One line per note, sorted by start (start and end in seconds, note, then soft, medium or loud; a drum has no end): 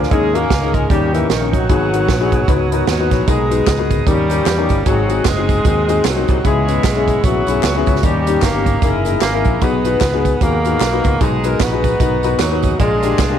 0.00 0.13 F3 medium
0.00 0.12 F4 medium
0.00 1.66 A#4 medium
0.00 0.87 G#5 medium
0.00 snare soft
0.10 0.45 D#2 loud
0.10 0.70 D#3 medium
0.10 0.37 G#3 medium
0.10 0.26 A#3 medium
0.10 0.26 C#4 medium
0.10 0.34 C#4 medium
0.10 0.26 D#4 medium
0.10 0.27 G#4 medium
0.10 0.35 G#4 loud
0.10 1.68 D#5 medium
0.10 1.68 C#6 medium
0.10 kick loud
0.10 closed hi-hat medium
0.34 0.50 A#3 medium
0.34 0.76 A#3 loud
0.34 0.50 C#4 medium
0.34 0.87 C#4 medium
0.34 0.50 D#4 medium
0.34 0.51 F#4 medium
0.34 0.91 A#4 medium
0.34 closed hi-hat medium
0.50 0.84 C#2 medium
0.50 kick medium
0.50 snare loud
0.50 closed hi-hat medium
0.61 0.81 A#3 medium
0.61 0.81 C#4 medium
0.61 0.82 D#4 medium
0.61 0.82 G#4 medium
0.74 0.89 G#3 medium
0.74 kick medium
0.74 closed hi-hat medium
0.89 1.24 D#2 medium
0.89 1.49 D#3 medium
0.89 1.15 G3 medium
0.89 1.05 A#3 medium
0.89 1.65 A#3 medium
0.89 1.05 C#4 medium
0.89 1.66 C#4 medium
0.89 1.06 D#4 medium
0.89 1.27 G4 medium
0.89 1.06 G4 medium
0.89 1.69 G5 medium
0.89 kick loud
0.89 closed hi-hat medium
1.13 1.29 E3 medium
1.13 1.29 A#3 medium
1.13 1.29 C#4 medium
1.13 1.29 D#4 medium
1.13 1.30 A#4 medium
1.13 closed hi-hat medium
1.30 1.71 A#1 medium
1.30 1.54 D#3 medium
1.30 1.53 D#4 medium
1.30 snare loud
1.30 closed hi-hat medium
1.40 1.60 A#3 medium
1.40 1.61 C#4 medium
1.40 1.61 D#4 medium
1.40 1.61 A#4 medium
1.53 2.87 F#3 loud
1.53 2.60 B3 medium
1.53 2.60 D#4 medium
1.53 2.64 F#4 loud
1.53 kick medium
1.53 closed hi-hat medium
1.69 2.09 G#1 loud
1.69 2.28 G#2 medium
1.69 1.84 B3 medium
1.69 1.84 D#4 medium
1.69 1.85 F#4 medium
1.69 1.85 G#4 medium
1.69 4.05 B4 medium
1.69 4.05 F#5 medium
1.69 3.26 G#5 medium
1.69 6.41 D#6 medium
1.69 kick medium
1.69 closed hi-hat medium
1.92 2.08 B3 medium
1.92 2.08 D#4 medium
1.92 2.09 F#4 medium
1.92 2.09 A#4 medium
1.92 closed hi-hat medium
2.09 2.29 A#1 medium
2.09 kick medium
2.09 snare loud
2.09 closed hi-hat medium
2.20 2.39 B3 medium
2.20 2.40 D#4 medium
2.20 2.40 F#4 medium
2.20 2.40 G#4 medium
2.32 2.46 B1 medium
2.32 kick medium
2.32 closed hi-hat medium
2.48 2.82 C#2 medium
2.48 2.63 B3 medium
2.48 2.63 D#4 medium
2.48 2.64 F#4 medium
2.48 2.64 B4 medium
2.48 kick loud
2.48 closed hi-hat medium
2.71 2.87 B3 medium
2.71 2.88 D#4 medium
2.71 2.88 F#4 medium
2.71 2.88 A#4 medium
2.71 closed hi-hat medium
2.87 3.08 D#2 medium
2.87 3.10 F#3 medium
2.87 3.25 B3 medium
2.87 3.25 D#4 medium
2.87 3.25 F#4 medium
2.87 snare loud
2.87 closed hi-hat medium
2.99 3.19 B3 medium
2.99 3.19 D#4 medium
2.99 3.20 F#4 medium
2.99 3.20 B4 medium
3.11 3.25 A#1 medium
3.11 3.30 F#3 medium
3.11 kick medium
3.11 snare soft
3.11 closed hi-hat medium
3.27 3.61 B1 medium
3.27 3.87 B2 medium
3.27 3.82 G#3 loud
3.27 3.43 B3 medium
3.27 3.43 D#4 medium
3.27 4.03 D#4 medium
3.27 3.43 F#4 medium
3.27 4.07 G#4 medium
3.27 3.43 A#4 medium
3.27 4.07 A#5 medium
3.27 kick loud
3.27 closed hi-hat medium
3.27 tambourine medium
3.50 3.66 B3 medium
3.50 3.66 D#4 medium
3.50 3.67 F#4 medium
3.50 3.67 B4 medium
3.50 closed hi-hat medium
3.50 tambourine medium
3.67 4.01 C#2 medium
3.67 kick medium
3.67 snare loud
3.67 clap medium
3.67 closed hi-hat medium
3.67 tambourine medium
3.78 3.98 B3 medium
3.78 3.98 D#4 medium
3.78 3.98 F#4 medium
3.78 3.99 A#4 medium
3.91 kick medium
3.91 closed hi-hat medium
3.91 tambourine soft
4.06 4.40 D#2 medium
4.06 4.66 D#3 medium
4.06 4.82 G3 medium
4.06 4.83 A#3 medium
4.06 4.21 C#4 medium
4.06 4.83 C#4 medium
4.06 4.22 D#4 medium
4.06 4.22 G4 medium
4.06 4.83 G4 loud
4.06 4.85 A#4 medium
4.06 4.22 A#4 medium
4.06 4.86 G5 medium
4.06 4.86 C#6 medium
4.06 kick loud
4.06 closed hi-hat medium
4.06 tambourine medium
4.29 4.45 C#4 medium
4.29 4.46 D#4 medium
4.29 4.46 G4 medium
4.29 4.46 A#4 medium
4.29 closed hi-hat medium
4.29 tambourine medium
4.46 4.66 E2 medium
4.46 snare loud
4.46 clap medium
4.46 closed hi-hat medium
4.46 tambourine medium
4.57 4.77 C#4 medium
4.57 4.77 D#4 medium
4.57 4.78 G4 medium
4.57 4.78 A#4 medium
4.69 4.84 G1 medium
4.69 kick medium
4.69 closed hi-hat medium
4.69 tambourine soft
4.85 5.20 G#1 medium
4.85 5.45 G#2 medium
4.85 5.28 F#3 medium
4.85 5.01 C4 medium
4.85 5.25 C4 medium
4.85 5.01 D#4 medium
4.85 5.25 D#4 medium
4.85 5.02 F#4 medium
4.85 5.26 F#4 medium
4.85 6.43 G#4 medium
4.85 5.02 G#4 medium
4.85 6.43 F#5 medium
4.85 6.43 C6 medium
4.85 kick loud
4.85 closed hi-hat medium
4.85 tambourine medium
5.08 5.25 C4 medium
5.08 5.25 D#4 medium
5.08 5.25 F#4 medium
5.08 5.26 G#4 medium
5.08 closed hi-hat medium
5.08 tambourine medium
5.25 5.59 F#1 medium
5.25 6.07 G#3 medium
5.25 6.01 C4 medium
5.25 6.01 D#4 medium
5.25 6.05 G#4 medium
5.25 kick medium
5.25 snare loud
5.25 clap medium
5.25 closed hi-hat medium
5.25 tambourine medium
5.36 5.56 C4 medium
5.36 5.56 D#4 medium
5.36 5.57 F#4 medium
5.36 5.57 G#4 medium
5.49 kick medium
5.49 closed hi-hat medium
5.49 tambourine medium
5.64 5.99 D#2 medium
5.64 5.80 C4 medium
5.64 5.80 D#4 medium
5.64 5.81 F#4 medium
5.64 5.81 G#4 medium
5.64 kick loud
5.64 closed hi-hat medium
5.64 tambourine medium
5.88 6.04 C4 medium
5.88 6.04 D#4 medium
5.88 6.04 F#4 medium
5.88 6.05 G#4 medium
5.88 closed hi-hat medium
5.88 tambourine soft
6.05 6.25 C2 medium
6.05 6.28 F#3 medium
6.05 6.42 C4 medium
6.05 6.42 D#4 medium
6.05 6.45 F#4 medium
6.05 snare loud
6.05 clap medium
6.05 closed hi-hat medium
6.05 tambourine medium
6.15 6.35 C4 medium
6.15 6.36 D#4 medium
6.15 6.36 F#4 medium
6.15 6.36 A#4 medium
6.28 6.42 C2 medium
6.28 6.47 F#3 medium
6.28 kick medium
6.28 closed hi-hat medium
6.28 tambourine soft
6.43 6.79 C#2 medium
6.43 7.04 C#3 medium
6.43 7.26 G#3 medium
6.43 6.59 B3 medium
6.43 7.21 B3 medium
6.43 6.60 C#4 medium
6.43 6.60 E4 medium
6.43 7.21 E4 medium
6.43 8.02 G#4 medium
6.43 6.60 G#4 medium
6.43 6.96 G#4 loud
6.43 8.02 E5 medium
6.43 8.02 B5 medium
6.43 8.80 C#6 medium
6.43 kick loud
6.43 closed hi-hat medium
6.43 tambourine medium
6.67 6.83 B3 medium
6.67 6.84 C#4 medium
6.67 6.84 E4 medium
6.67 6.84 B4 medium
6.67 closed hi-hat medium
6.67 tambourine medium
6.84 7.18 B1 medium
6.84 kick medium
6.84 snare loud
6.84 clap medium
6.84 closed hi-hat medium
6.84 tambourine medium
6.95 7.15 B3 medium
6.95 7.15 C#4 medium
6.95 7.16 E4 medium
6.95 7.16 G#4 medium
7.08 kick medium
7.08 closed hi-hat medium
7.08 tambourine soft
7.23 7.44 A#1 medium
7.23 7.97 F#3 loud
7.23 7.39 B3 medium
7.23 8.00 B3 medium
7.23 7.39 C#4 medium
7.23 7.39 E4 medium
7.23 8.00 F#4 loud
7.23 7.40 G#4 medium
7.23 kick loud
7.23 closed hi-hat medium
7.23 tambourine medium
7.46 7.61 B1 medium
7.46 7.63 B3 medium
7.46 7.63 C#4 medium
7.46 7.63 E4 medium
7.46 7.64 G#4 medium
7.46 closed hi-hat medium
7.46 tambourine medium
7.63 7.83 C#2 medium
7.63 snare loud
7.63 clap medium
7.63 closed hi-hat medium
7.63 tambourine medium
7.75 7.95 B3 medium
7.75 7.95 C#4 medium
7.75 7.95 E4 medium
7.75 7.95 G#4 medium
7.86 8.01 C#2 medium
7.86 kick medium
7.86 closed hi-hat medium
7.86 tambourine soft
7.96 8.05 F#3 medium
7.96 snare soft
8.03 8.37 D#2 loud
8.03 8.62 D#3 medium
8.03 8.45 G3 medium
8.03 8.18 A#3 medium
8.03 8.79 A#3 medium
8.03 8.18 C#4 medium
8.03 8.43 C#4 medium
8.03 8.19 D#4 medium
8.03 8.82 G4 medium
8.03 8.19 G4 medium
8.03 8.43 G4 medium
8.03 8.82 D#5 medium
8.03 9.60 A#5 medium
8.03 kick loud
8.03 closed hi-hat medium
8.03 tambourine medium
8.26 8.42 A#3 medium
8.26 8.42 C#4 medium
8.26 8.43 D#4 medium
8.26 8.43 G4 medium
8.26 closed hi-hat medium
8.26 tambourine medium
8.42 8.76 G1 medium
8.42 8.98 A#3 medium
8.42 8.80 C#4 medium
8.42 8.81 G4 medium
8.42 8.82 A#4 loud
8.42 kick medium
8.42 snare loud
8.42 clap medium
8.42 closed hi-hat medium
8.42 tambourine medium
8.54 8.74 A#3 medium
8.54 8.74 C#4 medium
8.54 8.74 D#4 medium
8.54 8.74 G4 medium
8.66 kick medium
8.66 closed hi-hat medium
8.66 tambourine medium
8.82 9.16 F#1 medium
8.82 8.97 A#3 medium
8.82 9.22 C#4 medium
8.82 8.98 D#4 medium
8.82 9.22 E4 medium
8.82 8.98 E4 medium
8.82 12.75 G#4 medium
8.82 8.98 G#4 medium
8.82 9.20 A#4 medium
8.82 9.61 E5 medium
8.82 12.75 D#6 medium
8.82 kick loud
8.82 closed hi-hat medium
8.82 tambourine medium
9.05 9.21 A#3 medium
9.05 9.21 D#4 medium
9.05 9.22 E4 medium
9.05 9.22 G#4 medium
9.05 closed hi-hat medium
9.05 tambourine soft
9.21 9.42 G#1 medium
9.21 9.63 A#3 medium
9.21 9.60 C#4 medium
9.21 9.60 E4 medium
9.21 9.60 A#4 loud
9.21 snare loud
9.21 clap medium
9.21 closed hi-hat medium
9.21 tambourine medium
9.33 9.53 A#3 medium
9.33 9.53 D#4 medium
9.33 9.54 E4 medium
9.33 9.54 A#4 medium
9.45 9.59 A#1 medium
9.45 kick medium
9.45 closed hi-hat medium
9.45 tambourine soft
9.61 9.96 B1 loud
9.61 10.21 B2 medium
9.61 9.77 B3 medium
9.61 10.44 B3 loud
9.61 9.77 D#4 medium
9.61 10.25 D#4 medium
9.61 9.77 F#4 medium
9.61 10.25 G#4 medium
9.61 9.78 G#4 medium
9.61 10.25 B4 loud
9.61 11.19 F#5 medium
9.61 kick medium
9.61 closed hi-hat medium
9.61 tambourine medium
9.85 10.01 B3 medium
9.85 10.01 D#4 medium
9.85 10.01 F#4 medium
9.85 10.02 B4 medium
9.85 closed hi-hat medium
9.85 tambourine medium
10.01 10.35 C#2 medium
10.01 kick medium
10.01 snare loud
10.01 clap medium
10.01 closed hi-hat medium
10.01 tambourine medium
10.13 10.32 B3 medium
10.13 10.33 D#4 medium
10.13 10.33 F#4 medium
10.13 10.33 G#4 medium
10.25 kick medium
10.25 closed hi-hat medium
10.25 tambourine medium
10.41 10.75 D#2 medium
10.41 11.23 A#3 loud
10.41 10.56 B3 medium
10.41 10.57 D#4 medium
10.41 11.17 D#4 medium
10.41 10.57 F#4 medium
10.41 11.17 F#4 medium
10.41 10.57 G#4 medium
10.41 11.21 A#4 loud
10.41 kick loud
10.41 closed hi-hat medium
10.41 tambourine medium
10.64 10.80 B3 medium
10.64 10.81 D#4 medium
10.64 10.81 F#4 medium
10.64 10.81 G#4 medium
10.64 closed hi-hat medium
10.64 tambourine medium
10.80 11.01 B1 medium
10.80 snare loud
10.80 clap medium
10.80 closed hi-hat medium
10.80 tambourine medium
10.92 11.12 B3 medium
10.92 11.12 D#4 medium
10.92 11.12 F#4 medium
10.92 11.13 B4 medium
11.04 11.19 C#2 medium
11.04 kick medium
11.04 closed hi-hat medium
11.04 tambourine medium
11.20 11.55 B1 loud
11.20 11.80 B2 medium
11.20 11.62 G#3 loud
11.20 11.35 B3 medium
11.20 11.36 D#4 medium
11.20 11.61 D#4 medium
11.20 11.36 F#4 medium
11.20 11.36 G#4 medium
11.20 11.45 G#4 loud
11.20 12.78 F#5 medium
11.20 kick loud
11.20 closed hi-hat medium
11.20 tambourine medium
11.44 11.60 B3 medium
11.44 11.60 D#4 medium
11.44 11.60 F#4 medium
11.44 11.61 A#4 medium
11.44 11.61 B4 medium
11.44 closed hi-hat medium
11.44 tambourine medium
11.60 11.94 A#1 medium
11.60 12.40 B3 loud
11.60 12.37 D#4 medium
11.60 12.37 F#4 medium
11.60 12.16 B4 loud
11.60 kick medium
11.60 snare loud
11.60 clap medium
11.60 closed hi-hat medium
11.60 tambourine medium
11.71 11.91 B3 medium
11.71 11.91 D#4 medium
11.71 11.92 F#4 medium
11.71 11.92 G#4 medium
11.84 kick medium
11.84 closed hi-hat medium
11.84 tambourine medium
11.99 12.34 B1 medium
11.99 12.15 B3 medium
11.99 12.15 D#4 medium
11.99 12.16 F#4 medium
11.99 12.16 A#4 medium
11.99 kick loud
11.99 closed hi-hat medium
11.99 tambourine medium
12.23 12.39 B3 medium
12.23 12.39 D#4 medium
12.23 12.40 F#4 medium
12.23 12.40 A#4 medium
12.23 closed hi-hat medium
12.23 tambourine soft
12.39 12.73 D#2 medium
12.39 12.77 F#3 medium
12.39 12.77 D#4 medium
12.39 12.78 F#4 medium
12.39 snare loud
12.39 clap medium
12.39 closed hi-hat medium
12.39 tambourine medium
12.51 12.70 B3 medium
12.51 12.71 D#4 medium
12.51 12.71 F#4 medium
12.51 12.71 B4 medium
12.63 kick medium
12.63 closed hi-hat medium
12.63 tambourine medium
12.78 13.13 A#1 loud
12.78 13.39 A#2 medium
12.78 13.39 G#3 loud
12.78 12.94 A#3 medium
12.78 12.95 D4 medium
12.78 13.39 D4 medium
12.78 12.95 F4 medium
12.78 13.39 F4 medium
12.78 13.39 G#4 medium
12.78 13.39 G#4 loud
12.78 12.95 G#4 medium
12.78 13.39 F5 medium
12.78 13.39 A#5 medium
12.78 13.39 D6 medium
12.78 kick loud
12.78 closed hi-hat medium
12.78 tambourine medium
13.02 13.18 A#3 medium
13.02 13.18 D4 medium
13.02 13.19 F4 medium
13.02 13.19 G4 medium
13.02 closed hi-hat medium
13.02 tambourine medium
13.19 13.39 C2 medium
13.19 kick medium
13.19 snare loud
13.19 clap medium
13.19 closed hi-hat medium
13.19 tambourine medium
13.30 13.39 A#3 medium
13.30 13.39 D4 medium
13.30 13.39 F4 medium
13.30 13.39 G4 medium